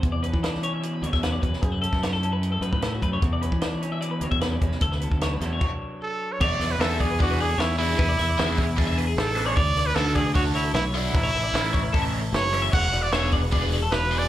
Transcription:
<<
  \new Staff \with { instrumentName = "Clean electric guitar" } { \time 4/4 \key e \mixolydian \tempo 4 = 151 r16 d''16 b'8 d''8 cis''16 e''16 d''16 b'16 cis''16 e''16 b'16 d''16 b'8 | gis'16 b'16 a'8 cis''16 a'8 b'8 a'16 b'16 b'16 a'16 fis'16 b'16 cis''16 | r16 d''16 b'8 d''8 cis''16 e''16 d''16 b'16 cis''16 e''16 b'16 d''16 b'8 | a'16 b'16 a'8 cis''16 b'8 cis''8 r4. r16 |
cis''8 d''8 e''8 d''16 b'16 d''16 b'16 d''16 a'16 cis''8 d''8 | b'16 d''16 e''16 d''16 e''8 cis''16 b'16 a'16 e''16 b'16 gis'8 a'16 b'16 d''16 | cis''8 d''8 e''8 d''16 b'16 cis''16 a'16 cis''16 a'16 cis''8 d''8 | b'16 cis''16 e''16 d''16 e''8 cis''16 b'16 a'16 e''16 cis''16 a'8 b'16 cis''16 e''16 |
cis''8 d''8 e''8 d''16 b'16 d''16 b'16 d''16 a'16 cis''8 d''8 | }
  \new Staff \with { instrumentName = "Trumpet" } { \time 4/4 \key e \mixolydian r1 | r1 | r1 | r2. a'8. cis''16 |
d''8. b'16 a'8 gis'8 fis'8 gis'8 e'8 e'8~ | e'2~ e'8 r8 a'8. cis''16 | d''8. b'16 a'8 gis'8 fis'8 e'8 e'8 e'8~ | e'2~ e'8 r8 cis''8. r16 |
fis''8. d''16 cis''8 r4. b'8. d''16 | }
  \new Staff \with { instrumentName = "Overdriven electric guitar" } { \time 4/4 \key e \mixolydian r1 | r1 | r1 | r1 |
r4 <e b d' gis'>8 r8 <e b d' gis'>8 r4 <e b d' gis'>8 | r4 <e b d' gis'>8 r8 <e b d' gis'>8 r4 <e b d' gis'>8 | r4 <d a d' fis'>8 r8 <d a d' fis'>8 r4 <d a d' fis'>8 | r4 <e a cis' e'>8 r8 <e a cis' e'>8 r4 <e a cis' e'>8 |
r4 <e b d' gis'>8 r8 <e b d' gis'>8 r4 <e b d' gis'>8 | }
  \new Staff \with { instrumentName = "Clean electric guitar" } { \time 4/4 \key e \mixolydian << { r8 cis'8 d'8 cis'4 fis8 cis'8 fis8~ | fis8 cis'8 d'16 e'16 cis'4 a8 cis'8 a8 | r8 cis'8 d'8 cis'4 fis8 cis'8 fis8~ | fis8 b8 d'8 <e fis b d'>2~ <e fis b d'>8~ |
<e fis b d'>2 r2 | r1 | r1 | r1 |
r1 | } \\ { e,2 b,2 | fis,2 cis2 | e,2 b,2 | d,4. e,8 r2 |
r1 | r1 | r1 | r1 |
r1 | } >> }
  \new Staff \with { instrumentName = "Fingered electric bass" } { \clef bass \time 4/4 \key e \mixolydian e,8. e4.~ e16 e,16 e,8. e,16 r16 | fis,8. fis,4.~ fis,16 fis,16 a,8. fis,8 | e,8. e4.~ e16 e,16 e,8. e,16 r16 | d,8. d,8. e,8 r2 |
e,8 e,8 e,2 e,4 | e,8 e,8 e,2 a,,4 | d,8 d,8 d,2 b,,4 | a,,8 a,,8 a,,2 fis,,4 |
e,,8 e,,8 e,,2 e,,4 | }
  \new DrumStaff \with { instrumentName = "Drums" } \drummode { \time 4/4 <hh bd>8 hh16 bd16 <hh sn>16 sn16 hh8 hh8 hh16 <bd sn>16 <hh sn>8 <hh bd>16 sn16 | <hh bd>8 hh16 <bd sn>16 <hh sn>16 sn16 hh8 hh8 hh16 bd16 <hh sn>8 <hh bd>8 | <hh bd>8 hh16 bd16 <hh sn>8 hh8 hh8 hh16 bd16 <hh sn>8 <hh bd>16 sn16 | <hh bd>16 sn16 hh16 bd16 <hh sn>8 <hh sn>8 <cymc bd>4 r4 |
<cymc bd>8 <hho sn>8 <hho sn>8 <hho bd>8 <hho bd>8 hho8 <hho sn>8 hho8 | <hho bd>8 <hho sn>8 <hho sn>8 <hho bd>8 <hho bd>8 hho8 <hho sn>8 hho8 | <hho bd>8 <hho sn>8 <hho sn>8 <hho bd>8 <hho bd>8 hho8 sn8 hho8 | <hho bd>8 <hho sn>8 <hho sn>8 <hho bd>8 <hho bd>8 hho8 <hho sn>8 hho8 |
<cymc bd>8 <hho sn>8 <hho sn>8 <hho bd>8 <hho bd>8 hho8 <hho sn>8 hho8 | }
>>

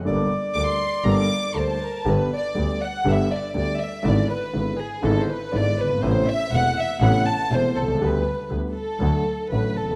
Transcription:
<<
  \new Staff \with { instrumentName = "Bandoneon" } { \time 4/4 \key g \minor \tempo 4 = 121 d''2. r4 | \key g \major r1 | r1 | r1 |
r1 | }
  \new Staff \with { instrumentName = "Violin section" } { \time 4/4 \key g \minor << { r4 d'''16 c'''8. bes''16 d'''8. a''16 a''8. | \key g \major r1 | r1 | r1 |
r1 | } \\ { r2. c''8 bes'8 | b'8 d''4 fis''8 e''8 d''8 d''8 e''8 | d''8 b'4 gis'8 a'16. c''32 b'8 d''8 b'8 | c''8 e''8 fis''8 e''8 fis''8 a''8 c''8 a'8 |
b'4 r8 a'4. b'8 a'8 | } >> }
  \new Staff \with { instrumentName = "Grand piano" } { \clef bass \time 4/4 \key g \minor <g,, g, g bes d' a'>8 r8 <d, d g bes d' a'>8 r8 <g,, g, g bes d' a'>8 r8 <d, d g bes d' a'>8 r8 | \key g \major <g,, g, d g b g'>8 r8 <d, d g b g'>8 r8 <g,, g, d g b g'>8 r8 <d, d g b g'>8 r8 | <gis,, gis, d gis b e'>8 r8 <gis,, gis, d gis b e'>8 r8 <gis,, gis, d gis b e'>8 r8 <gis,, gis, d gis b e'>8 r32 fis,,32 g,,32 gis,,32 | <a,, a, c a b e'>8 r8 <e,, e, c a b e'>8 r8 <a,, a, c a b e'>8 r8 <e,, e, c a b e'>8 r32 b,,32 c,32 cis,32 |
<d, d g b g'>8 r8 <d, d g b g'>8 r8 <d, d fis a fis'>8 r8 <a,, a, d fis a fis'>8 r32 e,32 f,32 r32 | }
  \new Staff \with { instrumentName = "Double bass" } { \clef bass \time 4/4 \key g \minor g,,8 r8 d,8 r8 g,,8 r8 d,8 r8 | \key g \major g,,8 r8 d,8 r8 g,,8 r8 d,8 r8 | gis,,8 r8 gis,,8 r8 gis,,8 r8 gis,,8 g,,8 | a,,8 r8 e,,8 r8 a,,8 r8 e,,8 c,8 |
d,8 r8 d,8 r8 d,8 r8 a,,8 f,,8 | }
>>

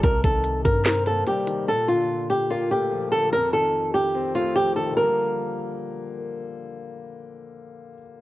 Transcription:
<<
  \new Staff \with { instrumentName = "Nylon-string guitar" } { \time 4/4 \key g \minor \tempo 4 = 146 bes'8 a'4 bes'8 bes'8 a'8 g'4 | a'8 f'4 g'8 f'8 g'4 a'8 | bes'8 a'4 g'4 f'8 g'8 a'8 | bes'2. r4 |
r1 | }
  \new Staff \with { instrumentName = "Grand piano" } { \clef bass \time 4/4 \key g \minor c8 ees4. c'8 bes8 g8 ees8 | bes,8 d4. bes8 a8 f8 d8 | f,8 ees4. c'8 a8 f8 ees8 | <d f g bes>1~ |
<d f g bes>1 | }
  \new Staff \with { instrumentName = "808-style bass" } { \clef bass \time 4/4 \key g \minor c,8 c,4 g,4. r4 | r1 | r1 | r1 |
r1 | }
  \new DrumStaff \with { instrumentName = "Drums" } \drummode { \time 4/4 <hh bd>8 bd8 hh8 bd8 <hc hh sn>8 hh8 hh8 hh8 | r4 r4 r4 r4 | r4 r4 r4 r4 | r4 r4 r4 r4 |
r4 r4 r4 r4 | }
>>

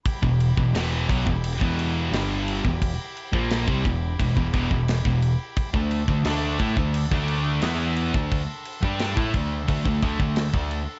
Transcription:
<<
  \new Staff \with { instrumentName = "Pipe organ" } { \time 4/4 \key e \minor \tempo 4 = 87 << { b''1~ | b''1~ | b''16 d'''2.~ d'''8.~ | d'''16 c'''2.~ c'''8. | } \\ { <e' g' g''>1~ | <e' g' g''>1~ | <e' g' g''>16 <d' a' a''>2.~ <d' a' a''>8.~ | <d' a' a''>1 | } >> }
  \new Staff \with { instrumentName = "Distorted electric guitar" } { \clef bass \time 4/4 \key e \minor r16 <e, b,>8 <e, b,>16 <e, b, e>8 <b, fis>16 <e, b,>8 <e, b, e>8. <g, d g>8. <e, b,>16~ | <e, b,>16 r8 <ais, f ais>8 <c g>16 <e, b,>8 <e, b,>16 <e, b,>16 <e, b,>16 <e, b,>8 <e, b,>8 r16 | r16 <d a>8 <d a>16 <d a d'>8 <a e'>16 <d a>8 <d a d'>8. <e b e'>8. <d a>16~ | <d a>16 r8 <g d' g'>8 <a e'>16 <d a>8 <d a>16 <d a>16 <d a>16 <d a>8 <d a>8 r16 | }
  \new Staff \with { instrumentName = "Distorted electric guitar" } { \clef bass \time 4/4 \key e \minor r16 <e, b,>8 <e, b,>16 <e, b, e>8 <b, fis>16 <e, b,>8 <e, b, e>8. <g, d g>8. <e, b,>16~ | <e, b,>16 r8 <ais, f ais>8 <c g>16 <e, b,>8 <e, b,>16 <e, b,>16 <e, b,>16 <e, b,>8 <e, b,>8 r16 | r16 <d a>8 <d a>16 <d a d'>8 <a e'>16 <d a>8 <d a d'>8. <e b e'>8. <d a>16~ | <d a>16 r8 <g d' g'>8 <a e'>16 <d a>8 <d a>16 <d a>16 <d a>16 <d a>8 <d a>8 r16 | }
  \new Staff \with { instrumentName = "Distorted electric guitar" } { \clef bass \time 4/4 \key e \minor r16 <e, b,>8 <e, b,>16 <e, b, e>8 <b, fis>16 <e, b,>8 <e, b, e>8. <g, d g>8. <e, b,>16~ | <e, b,>16 r8 <ais, f ais>8 <c g>16 <e, b,>8 <e, b,>16 <e, b,>16 <e, b,>16 <e, b,>8 <e, b,>8 r16 | r16 <d a>8 <d a>16 <d a d'>8 <a e'>16 <d a>8 <d a d'>8. <e b e'>8. <d a>16~ | <d a>16 r8 <g d' g'>8 <a e'>16 <d a>8 <d a>16 <d a>16 <d a>16 <d a>8 <d a>8 r16 | }
  \new Staff \with { instrumentName = "Picked electric bass" } { \clef bass \time 4/4 \key e \minor r16 e,,8 e,,16 e,,8 b,,16 e,,8 e,,8. g,,8. e,,16~ | e,,16 r8 ais,,8 c,16 e,,8 e,,16 e,,16 e,,16 e,,8 e,,8 r16 | r16 d,8 d,16 d,8 a,16 d,8 d,8. e,8. d,16~ | d,16 r8 g,8 a,16 d,8 d,16 d,16 d,16 d,8 d,8 r16 | }
  \new DrumStaff \with { instrumentName = "Drums" } \drummode { \time 4/4 <cymc bd>16 bd16 cymc16 bd16 <cymc sn>8 <cymc bd>16 bd16 cymc16 bd16 cymc8 <cymc sn>8 cymc16 bd16 | <cymc bd>8 cymc16 bd16 <cymc sn>16 bd16 <cymc bd>8 <cymc bd>16 bd16 <cymc bd>16 bd16 <cymc sn>16 bd16 cymc8 | <cymc bd>16 bd16 cymc16 bd16 <cymc sn>8 <cymc bd>16 bd16 cymc16 bd16 cymc8 <cymc sn>8 cymc16 bd16 | <cymc bd>8 cymc16 bd16 <cymc sn>16 bd16 <cymc bd>8 <cymc bd>16 bd16 <cymc bd>16 bd16 <cymc sn>16 bd16 cymc8 | }
>>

